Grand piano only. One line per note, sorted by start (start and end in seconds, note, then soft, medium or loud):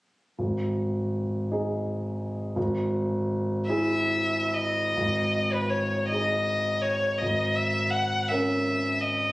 0.39 2.52 G#1 soft
1.51 2.52 D#4 soft
1.51 2.53 G#4 soft
2.56 4.92 G#1 soft
3.69 4.92 E4 soft
3.69 4.93 G#4 soft
4.97 7.16 G#1 soft
6.12 7.17 D#4 soft
6.12 7.17 G#4 soft
7.22 9.32 G#1 soft
8.31 9.32 C#4 soft
8.31 9.32 A#4 soft